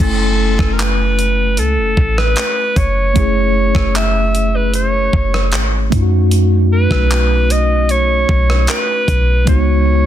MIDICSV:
0, 0, Header, 1, 5, 480
1, 0, Start_track
1, 0, Time_signature, 4, 2, 24, 8
1, 0, Tempo, 789474
1, 6117, End_track
2, 0, Start_track
2, 0, Title_t, "Alto saxophone"
2, 0, Program_c, 0, 65
2, 5, Note_on_c, 0, 69, 91
2, 443, Note_on_c, 0, 70, 64
2, 452, Note_off_c, 0, 69, 0
2, 486, Note_on_c, 0, 71, 91
2, 496, Note_off_c, 0, 70, 0
2, 966, Note_on_c, 0, 69, 89
2, 975, Note_off_c, 0, 71, 0
2, 1325, Note_on_c, 0, 71, 102
2, 1334, Note_off_c, 0, 69, 0
2, 1685, Note_on_c, 0, 73, 109
2, 1695, Note_off_c, 0, 71, 0
2, 2403, Note_off_c, 0, 73, 0
2, 2408, Note_on_c, 0, 76, 116
2, 2771, Note_on_c, 0, 71, 97
2, 2780, Note_off_c, 0, 76, 0
2, 2885, Note_off_c, 0, 71, 0
2, 2889, Note_on_c, 0, 73, 97
2, 3340, Note_off_c, 0, 73, 0
2, 4088, Note_on_c, 0, 71, 99
2, 4568, Note_on_c, 0, 75, 104
2, 4577, Note_off_c, 0, 71, 0
2, 4808, Note_on_c, 0, 73, 104
2, 4817, Note_off_c, 0, 75, 0
2, 5284, Note_off_c, 0, 73, 0
2, 5286, Note_on_c, 0, 71, 101
2, 5739, Note_off_c, 0, 71, 0
2, 5768, Note_on_c, 0, 73, 100
2, 6117, Note_off_c, 0, 73, 0
2, 6117, End_track
3, 0, Start_track
3, 0, Title_t, "Tine electric piano"
3, 0, Program_c, 1, 4
3, 0, Note_on_c, 1, 57, 66
3, 0, Note_on_c, 1, 61, 59
3, 8, Note_on_c, 1, 64, 63
3, 19, Note_on_c, 1, 80, 77
3, 95, Control_c, 1, 64, 127
3, 1888, Note_off_c, 1, 57, 0
3, 1894, Note_off_c, 1, 61, 0
3, 1899, Note_off_c, 1, 64, 0
3, 1905, Note_off_c, 1, 80, 0
3, 1906, Note_on_c, 1, 57, 71
3, 1917, Note_on_c, 1, 61, 61
3, 1929, Note_on_c, 1, 64, 61
3, 1940, Note_on_c, 1, 68, 78
3, 3569, Note_off_c, 1, 57, 0
3, 3574, Note_off_c, 1, 61, 0
3, 3580, Note_off_c, 1, 64, 0
3, 3586, Note_off_c, 1, 68, 0
3, 3587, Note_on_c, 1, 57, 83
3, 3599, Note_on_c, 1, 61, 72
3, 3608, Control_c, 1, 64, 0
3, 3610, Note_on_c, 1, 63, 77
3, 3622, Note_on_c, 1, 65, 74
3, 3650, Note_off_c, 1, 65, 0
3, 3660, Note_on_c, 1, 66, 88
3, 3711, Control_c, 1, 64, 127
3, 5489, Note_off_c, 1, 57, 0
3, 5495, Note_off_c, 1, 61, 0
3, 5501, Note_off_c, 1, 63, 0
3, 5526, Note_off_c, 1, 66, 0
3, 5747, Note_on_c, 1, 56, 68
3, 5758, Note_on_c, 1, 59, 66
3, 5768, Control_c, 1, 64, 0
3, 5769, Note_on_c, 1, 63, 64
3, 5781, Note_on_c, 1, 66, 74
3, 5862, Control_c, 1, 64, 127
3, 6117, Note_off_c, 1, 56, 0
3, 6117, Note_off_c, 1, 59, 0
3, 6117, Note_off_c, 1, 63, 0
3, 6117, Note_off_c, 1, 66, 0
3, 6117, End_track
4, 0, Start_track
4, 0, Title_t, "808-style bass"
4, 0, Program_c, 2, 38
4, 0, Note_on_c, 2, 30, 108
4, 345, Note_off_c, 2, 30, 0
4, 358, Note_on_c, 2, 30, 108
4, 959, Note_on_c, 2, 37, 101
4, 968, Note_off_c, 2, 30, 0
4, 1079, Note_on_c, 2, 30, 92
4, 1088, Note_off_c, 2, 37, 0
4, 1193, Note_off_c, 2, 30, 0
4, 1200, Note_on_c, 2, 33, 104
4, 1430, Note_off_c, 2, 33, 0
4, 1680, Note_on_c, 2, 30, 105
4, 1910, Note_off_c, 2, 30, 0
4, 1919, Note_on_c, 2, 30, 114
4, 2265, Note_off_c, 2, 30, 0
4, 2279, Note_on_c, 2, 30, 106
4, 3095, Note_off_c, 2, 30, 0
4, 3121, Note_on_c, 2, 30, 109
4, 3361, Note_on_c, 2, 32, 91
4, 3370, Note_off_c, 2, 30, 0
4, 3588, Note_off_c, 2, 32, 0
4, 3601, Note_on_c, 2, 42, 105
4, 4176, Note_off_c, 2, 42, 0
4, 4199, Note_on_c, 2, 35, 97
4, 5015, Note_off_c, 2, 35, 0
4, 5040, Note_on_c, 2, 35, 102
4, 5270, Note_off_c, 2, 35, 0
4, 5520, Note_on_c, 2, 35, 102
4, 5751, Note_off_c, 2, 35, 0
4, 5760, Note_on_c, 2, 37, 113
4, 6106, Note_off_c, 2, 37, 0
4, 6117, End_track
5, 0, Start_track
5, 0, Title_t, "Drums"
5, 0, Note_on_c, 9, 36, 118
5, 0, Note_on_c, 9, 42, 72
5, 0, Note_on_c, 9, 49, 99
5, 59, Note_off_c, 9, 42, 0
5, 60, Note_off_c, 9, 36, 0
5, 60, Note_off_c, 9, 49, 0
5, 359, Note_on_c, 9, 36, 91
5, 367, Note_on_c, 9, 37, 75
5, 419, Note_off_c, 9, 36, 0
5, 427, Note_off_c, 9, 37, 0
5, 483, Note_on_c, 9, 42, 68
5, 485, Note_on_c, 9, 39, 112
5, 544, Note_off_c, 9, 42, 0
5, 546, Note_off_c, 9, 39, 0
5, 721, Note_on_c, 9, 42, 71
5, 782, Note_off_c, 9, 42, 0
5, 956, Note_on_c, 9, 42, 57
5, 1017, Note_off_c, 9, 42, 0
5, 1199, Note_on_c, 9, 36, 86
5, 1260, Note_off_c, 9, 36, 0
5, 1326, Note_on_c, 9, 37, 89
5, 1387, Note_off_c, 9, 37, 0
5, 1434, Note_on_c, 9, 42, 62
5, 1444, Note_on_c, 9, 39, 119
5, 1495, Note_off_c, 9, 42, 0
5, 1505, Note_off_c, 9, 39, 0
5, 1680, Note_on_c, 9, 36, 97
5, 1681, Note_on_c, 9, 42, 73
5, 1741, Note_off_c, 9, 36, 0
5, 1742, Note_off_c, 9, 42, 0
5, 1919, Note_on_c, 9, 42, 76
5, 1920, Note_on_c, 9, 36, 115
5, 1980, Note_off_c, 9, 36, 0
5, 1980, Note_off_c, 9, 42, 0
5, 2279, Note_on_c, 9, 36, 92
5, 2286, Note_on_c, 9, 37, 73
5, 2340, Note_off_c, 9, 36, 0
5, 2347, Note_off_c, 9, 37, 0
5, 2404, Note_on_c, 9, 42, 67
5, 2406, Note_on_c, 9, 39, 114
5, 2465, Note_off_c, 9, 42, 0
5, 2467, Note_off_c, 9, 39, 0
5, 2643, Note_on_c, 9, 42, 66
5, 2703, Note_off_c, 9, 42, 0
5, 2879, Note_on_c, 9, 42, 59
5, 2940, Note_off_c, 9, 42, 0
5, 3120, Note_on_c, 9, 36, 86
5, 3181, Note_off_c, 9, 36, 0
5, 3248, Note_on_c, 9, 37, 89
5, 3308, Note_off_c, 9, 37, 0
5, 3354, Note_on_c, 9, 42, 62
5, 3364, Note_on_c, 9, 39, 117
5, 3415, Note_off_c, 9, 42, 0
5, 3425, Note_off_c, 9, 39, 0
5, 3601, Note_on_c, 9, 36, 106
5, 3602, Note_on_c, 9, 42, 71
5, 3661, Note_off_c, 9, 36, 0
5, 3663, Note_off_c, 9, 42, 0
5, 3839, Note_on_c, 9, 42, 79
5, 3900, Note_off_c, 9, 42, 0
5, 4200, Note_on_c, 9, 36, 92
5, 4207, Note_on_c, 9, 37, 72
5, 4260, Note_off_c, 9, 36, 0
5, 4267, Note_off_c, 9, 37, 0
5, 4323, Note_on_c, 9, 42, 73
5, 4325, Note_on_c, 9, 39, 110
5, 4384, Note_off_c, 9, 42, 0
5, 4386, Note_off_c, 9, 39, 0
5, 4562, Note_on_c, 9, 42, 71
5, 4622, Note_off_c, 9, 42, 0
5, 4798, Note_on_c, 9, 42, 58
5, 4859, Note_off_c, 9, 42, 0
5, 5040, Note_on_c, 9, 36, 91
5, 5101, Note_off_c, 9, 36, 0
5, 5167, Note_on_c, 9, 37, 89
5, 5228, Note_off_c, 9, 37, 0
5, 5274, Note_on_c, 9, 42, 59
5, 5284, Note_on_c, 9, 39, 112
5, 5334, Note_off_c, 9, 42, 0
5, 5345, Note_off_c, 9, 39, 0
5, 5521, Note_on_c, 9, 36, 90
5, 5522, Note_on_c, 9, 42, 72
5, 5581, Note_off_c, 9, 36, 0
5, 5583, Note_off_c, 9, 42, 0
5, 5758, Note_on_c, 9, 42, 74
5, 5760, Note_on_c, 9, 36, 127
5, 5819, Note_off_c, 9, 42, 0
5, 5821, Note_off_c, 9, 36, 0
5, 6117, End_track
0, 0, End_of_file